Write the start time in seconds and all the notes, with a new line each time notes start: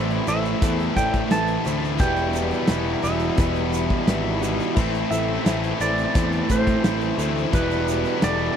Already playing: A1 A2 E3 A3 C4 E4 A4 C5 D5
0.10 closed hi-hat
0.27 A1 A2 E3 A3 C4 E4 A4 C5 E5, closed hi-hat, shaker
0.45 closed hi-hat, shaker
0.61 E2 A2 E3 A3 C4 E4 A4 C5, kick, closed hi-hat, shaker
0.80 snare, closed hi-hat
0.96 A2 E4 A4 D5 G5, kick, closed hi-hat, shaker
1.14 kick, closed hi-hat
1.30 A1 A2 E3 A3 C4 E4 A4 B4 A5, snare, closed hi-hat, shaker
1.48 closed hi-hat
1.65 D2 A2 E3 A3 C4 E4 A4 C5, closed hi-hat, shaker
1.85 shaker
1.99 E1 E2 B2 E3 G3 B3 E4 G4 B4 G5, kick, closed hi-hat, shaker
2.03 E4
2.17 closed hi-hat
2.33 E4 G4 B4, closed hi-hat, shaker
2.51 closed hi-hat, shaker
2.67 E1 E2 B2 E3 E4 G4, snare, closed hi-hat, shaker
2.72 G3 B3 E4 B4
3.03 E1 E2 B2 E3 G3 B3 E4 G4 B4 E5, closed hi-hat, shaker
3.20 closed hi-hat
3.37 E1 E2 B2 E3 G3 B3 E4 G4 B4, kick, closed hi-hat, shaker
3.41 E4
3.55 snare, closed hi-hat
3.71 E4 G4 B4, closed hi-hat, shaker
3.90 kick, shaker
4.06 G#1 E2 B2 E3 G3 B3 E4 G4 B4, snare, closed hi-hat, shaker
4.41 E2 B2 E3 G3 B3 E4 G4 B4, closed hi-hat, shaker
4.60 closed hi-hat, shaker
4.75 A1 A2 E3 A3 C4 E4 A4 C5, kick, crash, shaker
4.79 E4
4.95 closed hi-hat
5.10 A1 E4 A4 C5 E5, closed hi-hat, shaker
5.45 A1 A2 E3 A3 C4 E4 A4 C5, snare, closed hi-hat, shaker
5.64 closed hi-hat
5.80 A1 A2 E3 A3 C4 E4 A4 C5 D5, closed hi-hat, shaker
5.98 closed hi-hat, shaker
6.14 E2 A2 E3 A3 C4 E4 A4 C5, kick, closed hi-hat, shaker
6.32 snare, closed hi-hat
6.49 A2 E4 A4 C5, kick, closed hi-hat, shaker
6.67 kick, closed hi-hat
6.84 A1 A2 E3 A3 C4 E4 A4 C5, snare, closed hi-hat, shaker
7.01 closed hi-hat
7.18 D2 A2 E3 A3 C4 E4 A4 C5, closed hi-hat, shaker
7.38 shaker
7.53 E1 E2 B2 E3 G3 B3 E4 G4 B4, kick, closed hi-hat, shaker
7.71 closed hi-hat
7.88 E4 G4 D5, closed hi-hat, shaker
8.05 closed hi-hat
8.22 E1 E2 B2 E3 G3 B3 E4 G4 A4 D5, snare, closed hi-hat, shaker